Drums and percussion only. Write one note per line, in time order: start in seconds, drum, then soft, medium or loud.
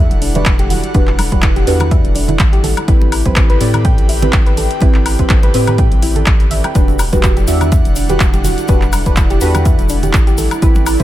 0.11 closed hi-hat soft
0.11 high conga medium
0.22 open hi-hat loud
0.35 closed hi-hat medium
0.35 muted conga medium
0.35 low conga loud
0.45 kick loud
0.45 clap loud
0.45 closed hi-hat medium
0.59 closed hi-hat soft
0.59 muted conga medium
0.70 open hi-hat loud
0.70 low conga medium
0.84 closed hi-hat medium
0.94 kick loud
0.94 closed hi-hat medium
0.94 muted conga medium
1.07 clap soft
1.19 open hi-hat loud
1.19 muted conga medium
1.19 high woodblock medium
1.32 kick medium
1.32 closed hi-hat medium
1.32 high conga loud
1.42 kick loud
1.42 clap loud
1.42 closed hi-hat medium
1.56 closed hi-hat soft
1.56 muted conga medium
1.67 open hi-hat loud
1.80 closed hi-hat medium
1.80 muted conga medium
1.80 low conga medium
1.80 high woodblock medium
1.91 kick loud
1.91 closed hi-hat medium
2.04 closed hi-hat soft
2.04 high conga medium
2.15 open hi-hat loud
2.15 muted conga medium
2.28 closed hi-hat medium
2.28 low conga loud
2.39 kick loud
2.39 clap loud
2.39 closed hi-hat medium
2.39 muted conga medium
2.53 closed hi-hat soft
2.63 open hi-hat loud
2.63 low conga medium
2.77 closed hi-hat medium
2.77 muted conga medium
2.77 high woodblock medium
2.88 kick loud
2.88 closed hi-hat medium
3.02 muted conga medium
3.12 open hi-hat loud
3.12 high woodblock medium
3.25 kick medium
3.25 closed hi-hat medium
3.25 high conga loud
3.36 kick loud
3.36 clap loud
3.36 closed hi-hat medium
3.50 closed hi-hat soft
3.61 open hi-hat loud
3.61 muted conga medium
3.74 closed hi-hat soft
3.74 low conga medium
3.74 high woodblock medium
3.85 kick loud
3.85 closed hi-hat medium
3.98 closed hi-hat soft
3.98 muted conga soft
3.98 high conga medium
4.09 open hi-hat loud
4.22 closed hi-hat medium
4.22 muted conga medium
4.22 low conga loud
4.33 kick loud
4.33 clap loud
4.33 closed hi-hat medium
4.46 closed hi-hat soft
4.57 open hi-hat loud
4.57 muted conga medium
4.57 low conga medium
4.71 closed hi-hat medium
4.80 kick loud
4.80 closed hi-hat medium
4.80 muted conga medium
4.94 clap soft
5.06 open hi-hat loud
5.06 high woodblock medium
5.19 kick medium
5.19 closed hi-hat soft
5.19 muted conga medium
5.19 high conga medium
5.29 kick loud
5.29 clap loud
5.29 closed hi-hat medium
5.43 closed hi-hat soft
5.43 muted conga medium
5.54 open hi-hat loud
5.67 closed hi-hat soft
5.67 low conga medium
5.67 high woodblock medium
5.78 kick loud
5.78 closed hi-hat medium
5.78 muted conga soft
5.91 closed hi-hat soft
5.91 high conga medium
6.02 open hi-hat loud
6.02 muted conga medium
6.16 closed hi-hat medium
6.16 low conga medium
6.26 kick loud
6.26 clap loud
6.26 closed hi-hat medium
6.40 closed hi-hat soft
6.40 muted conga soft
6.51 open hi-hat loud
6.51 low conga medium
6.64 closed hi-hat medium
6.64 muted conga medium
6.64 high woodblock medium
6.75 kick loud
6.75 closed hi-hat medium
6.75 shaker medium
6.88 muted conga medium
6.88 shaker soft
6.99 open hi-hat loud
6.99 high woodblock medium
6.99 shaker medium
7.13 kick medium
7.13 closed hi-hat medium
7.13 muted conga medium
7.13 high conga medium
7.13 shaker soft
7.23 kick loud
7.23 clap loud
7.23 closed hi-hat medium
7.23 shaker medium
7.37 closed hi-hat soft
7.37 shaker soft
7.48 open hi-hat medium
7.48 muted conga medium
7.48 shaker loud
7.61 closed hi-hat soft
7.61 low conga medium
7.61 high woodblock medium
7.61 shaker soft
7.72 kick loud
7.72 closed hi-hat medium
7.72 muted conga medium
7.72 shaker medium
7.85 closed hi-hat soft
7.85 high conga medium
7.85 shaker soft
7.96 open hi-hat loud
7.96 shaker medium
8.09 closed hi-hat medium
8.09 muted conga soft
8.09 low conga medium
8.09 shaker soft
8.20 kick loud
8.20 clap loud
8.20 closed hi-hat medium
8.20 shaker medium
8.34 closed hi-hat soft
8.34 muted conga medium
8.34 shaker soft
8.44 open hi-hat medium
8.44 low conga medium
8.44 shaker medium
8.58 closed hi-hat medium
8.58 shaker soft
8.68 kick loud
8.68 closed hi-hat medium
8.68 muted conga medium
8.68 shaker soft
8.81 clap soft
8.81 shaker soft
8.93 open hi-hat loud
8.93 muted conga medium
8.93 high woodblock medium
8.93 shaker loud
9.06 kick medium
9.06 closed hi-hat medium
9.06 high conga medium
9.06 shaker soft
9.16 kick loud
9.16 clap loud
9.16 closed hi-hat medium
9.16 shaker soft
9.30 closed hi-hat soft
9.30 muted conga medium
9.30 shaker soft
9.41 open hi-hat medium
9.41 shaker loud
9.54 closed hi-hat medium
9.54 muted conga medium
9.54 low conga medium
9.54 high woodblock medium
9.54 shaker soft
9.65 kick loud
9.65 closed hi-hat medium
9.65 shaker medium
9.79 closed hi-hat soft
9.79 high conga medium
9.79 shaker soft
9.89 open hi-hat loud
9.89 muted conga medium
9.89 shaker medium
10.03 closed hi-hat medium
10.03 low conga medium
10.03 shaker soft
10.13 kick loud
10.13 clap loud
10.13 closed hi-hat medium
10.13 muted conga medium
10.13 shaker medium
10.27 closed hi-hat soft
10.27 shaker soft
10.38 open hi-hat medium
10.38 low conga medium
10.38 shaker medium
10.51 closed hi-hat medium
10.51 muted conga soft
10.51 high woodblock medium
10.51 shaker soft
10.62 kick loud
10.62 closed hi-hat medium
10.62 shaker medium
10.75 muted conga medium
10.75 shaker soft
10.86 open hi-hat loud
10.86 high woodblock medium
10.86 shaker loud
11.00 kick medium
11.00 closed hi-hat medium
11.00 shaker soft